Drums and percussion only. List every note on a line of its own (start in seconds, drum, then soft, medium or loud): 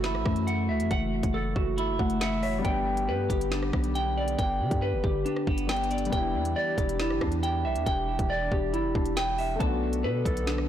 0.04 snare loud
0.15 cross-stick medium
0.26 kick loud
0.26 cross-stick loud
0.36 closed hi-hat medium
0.48 closed hi-hat medium
0.80 closed hi-hat medium
0.91 kick loud
0.91 closed hi-hat medium
1.23 kick loud
1.23 closed hi-hat medium
1.56 kick loud
1.78 closed hi-hat medium
1.99 kick loud
2.10 closed hi-hat medium
2.21 snare loud
2.21 closed hi-hat medium
2.43 open hi-hat medium
2.65 kick loud
2.65 closed hi-hat medium
2.97 closed hi-hat medium
3.30 kick loud
3.30 closed hi-hat medium
3.41 closed hi-hat medium
3.52 snare loud
3.63 cross-stick medium
3.73 kick loud
3.73 cross-stick loud
3.84 closed hi-hat medium
3.95 closed hi-hat medium
4.28 closed hi-hat medium
4.39 kick loud
4.39 closed hi-hat medium
4.71 kick medium
4.71 closed hi-hat medium
5.04 kick loud
5.26 closed hi-hat medium
5.36 cross-stick medium
5.47 kick loud
5.58 closed hi-hat medium
5.69 snare loud
5.69 closed hi-hat soft
5.76 closed hi-hat soft
5.84 closed hi-hat soft
5.91 closed hi-hat medium
5.91 open hi-hat medium
5.98 closed hi-hat medium
6.05 closed hi-hat medium
6.13 kick loud
6.13 closed hi-hat medium
6.45 closed hi-hat medium
6.78 kick loud
6.78 closed hi-hat loud
6.89 closed hi-hat medium
7.00 snare loud
7.10 cross-stick medium
7.21 kick loud
7.21 cross-stick loud
7.32 closed hi-hat medium
7.43 closed hi-hat medium
7.76 closed hi-hat medium
7.86 kick loud
7.86 closed hi-hat medium
8.19 kick medium
8.19 closed hi-hat medium
8.52 kick loud
8.74 closed hi-hat medium
8.95 kick loud
9.06 closed hi-hat medium
9.17 snare loud
9.17 closed hi-hat medium
9.38 open hi-hat medium
9.60 kick loud
9.60 closed hi-hat medium
9.93 closed hi-hat medium
10.25 kick loud
10.25 closed hi-hat medium
10.37 closed hi-hat medium
10.47 snare loud
10.58 cross-stick medium